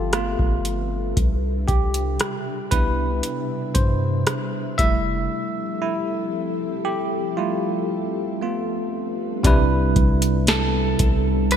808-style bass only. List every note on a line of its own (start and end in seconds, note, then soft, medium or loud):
0.00 0.36 G1 loud
0.39 1.14 G1 medium
1.17 1.67 C2 loud
1.69 2.18 C2 medium
2.72 3.22 C2 loud
3.76 4.25 G2 loud
4.79 5.29 F1 loud
9.45 9.94 C2 loud
9.96 10.96 C2 loud
11.00 11.57 C2 loud